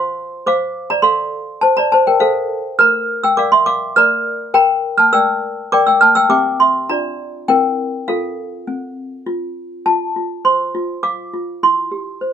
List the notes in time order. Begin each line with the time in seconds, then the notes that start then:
Already playing: C5 F5 C6
0.46 C5 F5 D6
0.90 D5 A#5
1.02 A4 F5 C6
1.61 C5 A5
1.77 D5 A#5
1.92 C5 A5
2.07 A#4 G5
2.20 A4 C5 F5
2.79 A#4 A#5 F6
3.23 G5 E6
3.37 A#4 D5 F5 D6
3.52 E5 C6
3.66 F5 D6
3.96 A#4 D5 A#5 F6
4.54 A#4 G5 A#5
4.98 A5 F6
5.13 A#4 D5 G5 E6
5.72 A#4 D5 G5 D6
5.87 G5 E6
6.01 A5 F6
6.15 G5 E6
6.29 C4 G4 E5 G5 D6
6.60 E5 C6
6.89 D4 F4 D5 A#5
7.48 C4 E4 A#4 G5
8.08 F4 A4 F5
8.67 C4
9.26 F4
9.86 F4 A5
10.16 F4
10.45 C5 C6
10.75 F4
11.03 F5 D6
11.33 F4
11.63 E4 C6
11.92 G4
12.21 C5